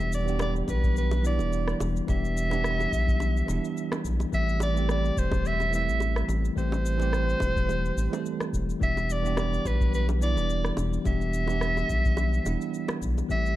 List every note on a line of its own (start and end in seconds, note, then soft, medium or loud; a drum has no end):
0.00 0.62 E1 medium
0.00 0.23 E3 medium
0.00 0.24 G3 medium
0.00 0.24 B3 medium
0.00 0.24 D4 medium
0.00 0.24 G4 medium
0.00 0.11 E5 loud
0.13 0.39 D5 medium
0.13 cabasa medium
0.25 1.20 E3 medium
0.25 1.20 G3 medium
0.25 1.21 B3 medium
0.25 1.22 D4 medium
0.25 cabasa soft
0.29 1.22 G4 loud
0.39 0.54 D5 medium
0.39 cross-stick medium
0.39 high bongo medium
0.39 cabasa soft
0.56 cabasa soft
0.68 1.41 B1 medium
0.68 0.95 B4 medium
0.68 kick medium
0.68 high bongo medium
0.68 cabasa medium
0.84 kick medium
0.84 cabasa soft
0.97 1.23 B4 medium
0.97 cabasa soft
1.11 high bongo medium
1.11 cabasa soft
1.22 2.04 E3 medium
1.22 2.05 G3 medium
1.22 2.05 B3 medium
1.22 2.06 D4 medium
1.22 cabasa medium
1.26 2.07 E4 medium
1.26 1.77 D5 medium
1.39 1.74 E1 medium
1.39 high bongo soft
1.39 cabasa soft
1.53 cabasa soft
1.68 cross-stick medium
1.68 cabasa soft
1.80 2.01 E1 loud
1.80 high bongo medium
1.80 cabasa medium
1.97 cabasa soft
2.07 2.87 E1 loud
2.07 2.47 E3 medium
2.07 2.48 G3 medium
2.07 2.48 B3 medium
2.07 2.48 D4 medium
2.07 2.49 G4 medium
2.07 4.01 E5 loud
2.07 kick loud
2.07 high bongo medium
2.07 cabasa soft
2.25 cabasa soft
2.37 cabasa medium
2.50 3.44 E3 medium
2.50 3.45 G3 medium
2.50 3.46 B3 medium
2.50 3.46 D4 medium
2.50 high bongo medium
2.50 cabasa soft
2.54 3.47 G4 medium
2.64 cross-stick medium
2.64 cabasa soft
2.80 high bongo soft
2.80 cabasa soft
2.93 3.43 B1 medium
2.93 kick loud
2.93 cabasa medium
3.08 kick loud
3.08 cabasa soft
3.20 high bongo medium
3.20 cabasa soft
3.37 cabasa soft
3.46 3.59 E1 medium
3.46 4.28 E3 medium
3.46 4.29 G3 medium
3.46 4.29 B3 medium
3.46 4.30 D4 medium
3.46 high bongo medium
3.46 cabasa medium
3.51 4.31 E4 medium
3.65 cabasa soft
3.77 cabasa soft
3.92 cross-stick medium
3.92 high bongo medium
3.92 cabasa soft
4.05 4.25 B1 medium
4.05 kick medium
4.05 cabasa medium
4.20 high bongo soft
4.20 cabasa soft
4.32 5.11 A1 medium
4.32 4.72 E3 medium
4.32 4.72 G3 medium
4.32 4.73 A3 medium
4.32 4.73 C4 medium
4.32 4.73 G4 medium
4.32 4.60 E5 loud
4.32 kick loud
4.32 cabasa soft
4.49 cabasa soft
4.60 4.88 D5 medium
4.60 high bongo medium
4.60 cabasa medium
4.74 5.69 E3 medium
4.74 5.69 G3 medium
4.74 5.70 A3 medium
4.74 5.70 C4 medium
4.74 cabasa soft
4.78 5.71 G4 loud
4.89 5.20 D5 medium
4.89 cross-stick medium
4.89 high bongo medium
4.89 cabasa soft
5.05 cabasa soft
5.17 5.90 E1 medium
5.17 5.48 C5 medium
5.17 kick loud
5.17 cabasa medium
5.31 kick loud
5.31 high bongo medium
5.31 cabasa soft
5.45 5.74 E5 loud
5.45 cabasa soft
5.60 high bongo medium
5.60 cabasa soft
5.70 6.53 E3 medium
5.70 6.53 G3 medium
5.70 6.54 A3 medium
5.70 6.54 C4 medium
5.70 cabasa medium
5.75 6.55 E4 medium
5.75 6.26 E5 medium
5.88 6.23 A1 medium
5.88 cabasa soft
6.00 high bongo medium
6.00 cabasa soft
6.16 cross-stick medium
6.16 cabasa soft
6.28 6.49 A1 loud
6.28 high bongo medium
6.28 cabasa medium
6.45 cabasa soft
6.56 7.35 A1 medium
6.56 6.96 E3 medium
6.56 6.96 G3 medium
6.56 6.96 A3 medium
6.56 6.97 C4 medium
6.56 6.97 G4 medium
6.56 8.50 C5 loud
6.56 kick loud
6.56 cabasa soft
6.72 high bongo medium
6.72 cabasa soft
6.86 cabasa medium
6.98 7.93 E3 medium
6.98 7.93 G3 medium
6.98 7.94 A3 medium
6.98 7.94 C4 medium
6.98 high bongo soft
6.98 cabasa soft
7.02 7.95 G4 medium
7.13 cross-stick medium
7.13 cabasa soft
7.29 cabasa soft
7.40 7.91 E1 medium
7.40 kick medium
7.40 high bongo medium
7.40 cabasa medium
7.56 kick loud
7.56 cabasa soft
7.69 high bongo soft
7.69 cabasa soft
7.85 cabasa soft
7.97 8.08 A1 medium
7.97 cabasa medium
8.10 8.77 E3 medium
8.10 8.77 G3 medium
8.10 8.78 A3 medium
8.10 8.79 C4 medium
8.10 high bongo medium
8.10 cabasa soft
8.15 8.79 A4 medium
8.26 cabasa soft
8.40 cross-stick medium
8.40 high bongo soft
8.40 cabasa soft
8.53 8.74 E1 medium
8.53 kick medium
8.53 cabasa medium
8.70 cabasa soft
8.80 9.59 E1 medium
8.80 9.20 E3 medium
8.80 9.20 G3 medium
8.80 9.21 B3 medium
8.80 9.21 D4 medium
8.80 9.21 G4 medium
8.80 9.13 E5 loud
8.80 kick loud
8.80 cabasa soft
8.97 high bongo medium
8.97 cabasa soft
9.10 9.39 D5 medium
9.10 cabasa medium
9.22 10.17 E3 medium
9.22 10.18 G3 medium
9.22 10.18 B3 medium
9.22 10.19 D4 medium
9.22 cabasa soft
9.27 10.19 G4 medium
9.37 9.68 D5 medium
9.37 cross-stick medium
9.37 high bongo medium
9.37 cabasa soft
9.53 cabasa soft
9.65 10.38 B1 medium
9.65 9.94 B4 medium
9.65 kick medium
9.65 high bongo medium
9.65 cabasa medium
9.81 kick medium
9.81 cabasa soft
9.94 10.07 B4 medium
9.94 cabasa soft
10.09 high bongo medium
10.09 cabasa soft
10.19 11.01 E3 medium
10.19 11.02 G3 medium
10.19 11.02 B3 medium
10.19 11.03 D4 medium
10.19 cabasa medium
10.23 11.03 E4 medium
10.23 10.74 D5 medium
10.37 10.71 E1 medium
10.37 high bongo soft
10.37 cabasa soft
10.50 cabasa soft
10.65 cross-stick medium
10.65 cabasa soft
10.77 10.98 E1 medium
10.77 high bongo medium
10.77 cabasa medium
10.93 cabasa soft
11.04 11.84 E1 medium
11.04 11.45 E3 medium
11.04 11.45 G3 medium
11.04 11.45 B3 medium
11.04 11.46 D4 medium
11.04 11.46 G4 medium
11.04 12.98 E5 loud
11.04 kick loud
11.04 high bongo soft
11.04 cabasa soft
11.21 cabasa soft
11.34 cabasa medium
11.47 12.42 E3 medium
11.47 12.42 G3 medium
11.47 12.43 B3 medium
11.47 12.43 D4 medium
11.47 high bongo medium
11.47 cabasa soft
11.52 12.44 G4 medium
11.61 cross-stick medium
11.61 cabasa soft
11.77 high bongo soft
11.77 cabasa soft
11.90 12.40 B1 medium
11.90 kick medium
11.90 cabasa medium
12.05 kick medium
12.05 cabasa soft
12.17 high bongo medium
12.17 cabasa soft
12.33 cabasa soft
12.43 12.57 E1 medium
12.43 13.26 E3 medium
12.43 13.26 G3 medium
12.43 13.27 B3 medium
12.43 13.27 D4 medium
12.43 high bongo medium
12.43 cabasa medium
12.48 13.28 E4 medium
12.61 cabasa soft
12.74 cabasa soft
12.88 cross-stick medium
12.88 high bongo medium
12.88 cabasa soft
13.02 13.22 B1 medium
13.02 kick medium
13.02 cabasa medium
13.18 high bongo soft
13.18 cabasa soft
13.28 13.56 A1 medium
13.28 13.56 E3 medium
13.28 13.56 G3 medium
13.28 13.56 A3 medium
13.28 13.56 C4 medium
13.28 13.56 G4 medium
13.28 13.56 E5 loud
13.28 kick loud
13.28 cabasa soft
13.46 cabasa soft